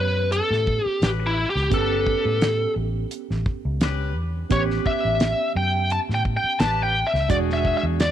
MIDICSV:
0, 0, Header, 1, 7, 480
1, 0, Start_track
1, 0, Tempo, 697269
1, 1179, Time_signature, 4, 2, 24, 8
1, 5586, End_track
2, 0, Start_track
2, 0, Title_t, "Lead electric guitar"
2, 0, Program_c, 0, 29
2, 0, Note_on_c, 0, 71, 86
2, 209, Note_off_c, 0, 71, 0
2, 222, Note_on_c, 0, 69, 92
2, 587, Note_off_c, 0, 69, 0
2, 587, Note_on_c, 0, 67, 92
2, 710, Note_off_c, 0, 67, 0
2, 710, Note_on_c, 0, 67, 83
2, 752, Note_off_c, 0, 67, 0
2, 871, Note_on_c, 0, 64, 73
2, 1030, Note_off_c, 0, 64, 0
2, 1034, Note_on_c, 0, 67, 74
2, 1191, Note_off_c, 0, 67, 0
2, 1194, Note_on_c, 0, 69, 79
2, 1879, Note_off_c, 0, 69, 0
2, 3112, Note_on_c, 0, 73, 81
2, 3175, Note_off_c, 0, 73, 0
2, 3351, Note_on_c, 0, 76, 88
2, 3798, Note_off_c, 0, 76, 0
2, 3834, Note_on_c, 0, 79, 96
2, 4074, Note_off_c, 0, 79, 0
2, 4077, Note_on_c, 0, 81, 105
2, 4118, Note_off_c, 0, 81, 0
2, 4230, Note_on_c, 0, 79, 90
2, 4272, Note_off_c, 0, 79, 0
2, 4384, Note_on_c, 0, 79, 92
2, 4531, Note_off_c, 0, 79, 0
2, 4542, Note_on_c, 0, 81, 94
2, 4690, Note_off_c, 0, 81, 0
2, 4702, Note_on_c, 0, 79, 90
2, 4865, Note_off_c, 0, 79, 0
2, 4865, Note_on_c, 0, 76, 82
2, 5011, Note_off_c, 0, 76, 0
2, 5027, Note_on_c, 0, 74, 90
2, 5069, Note_off_c, 0, 74, 0
2, 5186, Note_on_c, 0, 76, 80
2, 5342, Note_off_c, 0, 76, 0
2, 5350, Note_on_c, 0, 76, 78
2, 5392, Note_off_c, 0, 76, 0
2, 5513, Note_on_c, 0, 74, 71
2, 5586, Note_off_c, 0, 74, 0
2, 5586, End_track
3, 0, Start_track
3, 0, Title_t, "Horn section"
3, 0, Program_c, 1, 61
3, 703, Note_on_c, 1, 61, 74
3, 705, Note_on_c, 1, 67, 67
3, 714, Note_on_c, 1, 71, 81
3, 941, Note_off_c, 1, 61, 0
3, 942, Note_off_c, 1, 67, 0
3, 946, Note_off_c, 1, 71, 0
3, 1176, Note_on_c, 1, 61, 65
3, 1178, Note_on_c, 1, 67, 64
3, 1187, Note_on_c, 1, 71, 81
3, 1658, Note_off_c, 1, 61, 0
3, 1659, Note_off_c, 1, 67, 0
3, 1663, Note_off_c, 1, 71, 0
3, 2620, Note_on_c, 1, 61, 90
3, 2623, Note_on_c, 1, 67, 79
3, 2626, Note_on_c, 1, 71, 92
3, 2859, Note_off_c, 1, 61, 0
3, 2861, Note_off_c, 1, 67, 0
3, 2863, Note_off_c, 1, 71, 0
3, 3105, Note_on_c, 1, 67, 68
3, 3106, Note_on_c, 1, 61, 66
3, 3112, Note_on_c, 1, 71, 78
3, 3582, Note_off_c, 1, 67, 0
3, 3583, Note_off_c, 1, 61, 0
3, 3586, Note_off_c, 1, 71, 0
3, 4545, Note_on_c, 1, 61, 73
3, 4549, Note_on_c, 1, 67, 68
3, 4552, Note_on_c, 1, 71, 83
3, 4782, Note_off_c, 1, 61, 0
3, 4784, Note_off_c, 1, 67, 0
3, 4785, Note_off_c, 1, 71, 0
3, 5026, Note_on_c, 1, 66, 65
3, 5027, Note_on_c, 1, 62, 69
3, 5032, Note_on_c, 1, 68, 73
3, 5503, Note_off_c, 1, 62, 0
3, 5503, Note_off_c, 1, 66, 0
3, 5506, Note_off_c, 1, 68, 0
3, 5586, End_track
4, 0, Start_track
4, 0, Title_t, "Reed electric piano"
4, 0, Program_c, 2, 4
4, 0, Note_on_c, 2, 59, 60
4, 0, Note_on_c, 2, 61, 57
4, 0, Note_on_c, 2, 67, 67
4, 1147, Note_off_c, 2, 59, 0
4, 1149, Note_off_c, 2, 61, 0
4, 1152, Note_off_c, 2, 67, 0
4, 1172, Note_on_c, 2, 59, 62
4, 1175, Note_on_c, 2, 61, 54
4, 1182, Note_on_c, 2, 67, 68
4, 3068, Note_off_c, 2, 59, 0
4, 3070, Note_off_c, 2, 61, 0
4, 3073, Note_off_c, 2, 67, 0
4, 3095, Note_on_c, 2, 59, 62
4, 3098, Note_on_c, 2, 61, 60
4, 3103, Note_on_c, 2, 67, 70
4, 4990, Note_off_c, 2, 59, 0
4, 4991, Note_off_c, 2, 61, 0
4, 4994, Note_off_c, 2, 67, 0
4, 5013, Note_on_c, 2, 56, 62
4, 5019, Note_on_c, 2, 62, 61
4, 5022, Note_on_c, 2, 66, 69
4, 5586, Note_off_c, 2, 56, 0
4, 5586, Note_off_c, 2, 62, 0
4, 5586, Note_off_c, 2, 66, 0
4, 5586, End_track
5, 0, Start_track
5, 0, Title_t, "Fingered electric bass"
5, 0, Program_c, 3, 33
5, 0, Note_on_c, 3, 42, 89
5, 274, Note_off_c, 3, 42, 0
5, 348, Note_on_c, 3, 45, 92
5, 539, Note_off_c, 3, 45, 0
5, 700, Note_on_c, 3, 33, 90
5, 994, Note_off_c, 3, 33, 0
5, 1070, Note_on_c, 3, 37, 81
5, 1157, Note_off_c, 3, 37, 0
5, 1180, Note_on_c, 3, 31, 92
5, 1475, Note_off_c, 3, 31, 0
5, 1551, Note_on_c, 3, 45, 77
5, 1828, Note_off_c, 3, 45, 0
5, 1900, Note_on_c, 3, 33, 83
5, 2090, Note_off_c, 3, 33, 0
5, 2275, Note_on_c, 3, 33, 76
5, 2360, Note_off_c, 3, 33, 0
5, 2514, Note_on_c, 3, 37, 81
5, 2863, Note_off_c, 3, 37, 0
5, 2863, Note_on_c, 3, 40, 83
5, 3052, Note_off_c, 3, 40, 0
5, 3103, Note_on_c, 3, 33, 98
5, 3292, Note_off_c, 3, 33, 0
5, 3476, Note_on_c, 3, 33, 79
5, 3664, Note_off_c, 3, 33, 0
5, 3823, Note_on_c, 3, 42, 96
5, 4116, Note_off_c, 3, 42, 0
5, 4194, Note_on_c, 3, 45, 88
5, 4383, Note_off_c, 3, 45, 0
5, 4541, Note_on_c, 3, 33, 85
5, 4835, Note_off_c, 3, 33, 0
5, 4912, Note_on_c, 3, 37, 79
5, 4998, Note_off_c, 3, 37, 0
5, 5025, Note_on_c, 3, 28, 89
5, 5317, Note_off_c, 3, 28, 0
5, 5392, Note_on_c, 3, 40, 76
5, 5586, Note_off_c, 3, 40, 0
5, 5586, End_track
6, 0, Start_track
6, 0, Title_t, "Muted fingered electric bass strokes"
6, 591, Note_on_c, 9, 29, 37
6, 660, Note_off_c, 9, 29, 0
6, 4432, Note_on_c, 9, 29, 35
6, 4501, Note_off_c, 9, 29, 0
6, 5586, End_track
7, 0, Start_track
7, 0, Title_t, "Drums"
7, 221, Note_on_c, 9, 42, 59
7, 290, Note_off_c, 9, 42, 0
7, 363, Note_on_c, 9, 38, 29
7, 431, Note_off_c, 9, 38, 0
7, 463, Note_on_c, 9, 36, 81
7, 531, Note_off_c, 9, 36, 0
7, 704, Note_on_c, 9, 42, 60
7, 709, Note_on_c, 9, 38, 108
7, 773, Note_off_c, 9, 42, 0
7, 777, Note_off_c, 9, 38, 0
7, 1078, Note_on_c, 9, 38, 29
7, 1147, Note_off_c, 9, 38, 0
7, 1181, Note_on_c, 9, 36, 105
7, 1181, Note_on_c, 9, 42, 57
7, 1250, Note_off_c, 9, 36, 0
7, 1250, Note_off_c, 9, 42, 0
7, 1422, Note_on_c, 9, 36, 84
7, 1491, Note_off_c, 9, 36, 0
7, 1662, Note_on_c, 9, 42, 55
7, 1667, Note_on_c, 9, 38, 104
7, 1731, Note_off_c, 9, 42, 0
7, 1736, Note_off_c, 9, 38, 0
7, 2141, Note_on_c, 9, 42, 58
7, 2210, Note_off_c, 9, 42, 0
7, 2278, Note_on_c, 9, 38, 30
7, 2347, Note_off_c, 9, 38, 0
7, 2382, Note_on_c, 9, 36, 85
7, 2451, Note_off_c, 9, 36, 0
7, 2621, Note_on_c, 9, 42, 63
7, 2626, Note_on_c, 9, 38, 107
7, 2690, Note_off_c, 9, 42, 0
7, 2695, Note_off_c, 9, 38, 0
7, 3101, Note_on_c, 9, 42, 58
7, 3103, Note_on_c, 9, 36, 99
7, 3170, Note_off_c, 9, 42, 0
7, 3172, Note_off_c, 9, 36, 0
7, 3239, Note_on_c, 9, 38, 30
7, 3308, Note_off_c, 9, 38, 0
7, 3343, Note_on_c, 9, 36, 77
7, 3412, Note_off_c, 9, 36, 0
7, 3581, Note_on_c, 9, 42, 63
7, 3586, Note_on_c, 9, 38, 104
7, 3650, Note_off_c, 9, 42, 0
7, 3654, Note_off_c, 9, 38, 0
7, 4063, Note_on_c, 9, 42, 58
7, 4132, Note_off_c, 9, 42, 0
7, 4201, Note_on_c, 9, 38, 30
7, 4270, Note_off_c, 9, 38, 0
7, 4304, Note_on_c, 9, 36, 80
7, 4373, Note_off_c, 9, 36, 0
7, 4541, Note_on_c, 9, 42, 58
7, 4546, Note_on_c, 9, 38, 108
7, 4610, Note_off_c, 9, 42, 0
7, 4615, Note_off_c, 9, 38, 0
7, 4921, Note_on_c, 9, 38, 30
7, 4990, Note_off_c, 9, 38, 0
7, 5024, Note_on_c, 9, 36, 104
7, 5024, Note_on_c, 9, 42, 58
7, 5093, Note_off_c, 9, 36, 0
7, 5093, Note_off_c, 9, 42, 0
7, 5163, Note_on_c, 9, 38, 30
7, 5231, Note_off_c, 9, 38, 0
7, 5265, Note_on_c, 9, 36, 76
7, 5334, Note_off_c, 9, 36, 0
7, 5506, Note_on_c, 9, 42, 55
7, 5511, Note_on_c, 9, 38, 103
7, 5575, Note_off_c, 9, 42, 0
7, 5579, Note_off_c, 9, 38, 0
7, 5586, End_track
0, 0, End_of_file